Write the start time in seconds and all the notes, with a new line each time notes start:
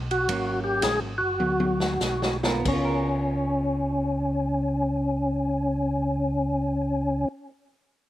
Already playing: B1
0.11 F#4, ride
0.28 G#1 F#3 A#3 C#4, kick, ride
0.64 G4
0.82 A#1 G#4, kick, snare, hi-hat pedal, ride
1.02 G#1
1.18 F#1 F#4
1.40 D2, high tom
1.60 high tom
1.80 snare
2.00 B1, snare, hi-hat pedal
2.22 snare
2.43 B3 F4 A#4, snare
2.60 B3
2.65 C#2 C#4, kick, crash
2.73 F4
2.85 A#4